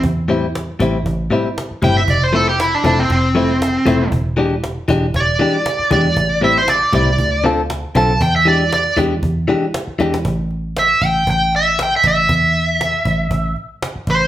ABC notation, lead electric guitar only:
X:1
M:4/4
L:1/16
Q:"Swing 16ths" 1/4=118
K:Am
V:1 name="Lead electric guitar"
z12 z2 g e | d c A G E D D C C8 | z8 d6 d2- | d2 e c d2 d4 z4 a2 |
g e d2 d2 z8 z2 | z4 e2 g2 g2 e2 g e e2- | e8- e2 z4 c2 |]